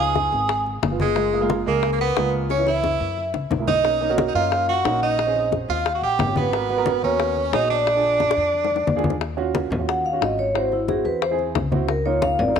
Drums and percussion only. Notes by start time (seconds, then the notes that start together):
0.15 high bongo, high conga
0.32 high bongo, high conga
0.49 high bongo, high conga
0.66 high conga
0.83 high bongo, low bongo, high conga
1.00 high bongo, high conga
1.16 high bongo, high conga
1.33 high conga
1.50 high bongo, high conga
1.83 high bongo, high conga
2.00 high conga
2.17 high bongo, low bongo, high conga
2.34 high conga
2.50 high bongo, high conga
2.67 high bongo, high conga
2.84 high bongo, high conga
3.01 high conga
3.17 high conga
3.34 low bongo, high conga
3.51 low bongo, high conga
3.67 low bongo, high conga
3.85 high bongo
4.01 high conga
4.18 high bongo, high conga
4.51 high bongo, high conga
4.68 high conga
4.85 high bongo, low bongo, high conga
5.02 high conga
5.18 high bongo, high conga
5.36 high bongo, high conga
5.52 high bongo, high conga
5.69 high bongo, high conga
5.85 high bongo, high conga
6.02 high conga
6.19 high bongo, low bongo, high conga
6.36 high bongo, high conga
6.53 high bongo, high conga
6.69 high conga
6.86 high bongo, high conga
7.20 high bongo, high conga
7.36 high conga
7.53 high bongo, low bongo, high conga
7.70 high conga
7.87 high bongo, high conga
8.03 high bongo, high conga
8.20 high bongo, high conga
8.31 high bongo
8.37 high conga
8.54 high conga
8.65 low bongo
8.71 high conga
8.76 low bongo
8.87 low bongo, high conga
8.99 low bongo
9.04 high conga
9.10 low bongo
9.21 high bongo, high conga
9.38 high conga
9.55 high bongo, high conga
9.72 low conga
9.89 high bongo
10.05 high conga
10.22 high bongo, low bongo, high conga
10.39 high conga
10.55 high bongo, high conga
10.72 high bongo, high conga
10.88 high bongo, high conga
11.05 high bongo, high conga
11.22 high bongo, high conga
11.39 high conga
11.55 high bongo, low bongo, high conga
11.72 high bongo, high conga
11.89 high bongo, high conga
12.06 high conga
12.22 high bongo, high conga
12.39 low conga
12.56 high bongo, high conga, low conga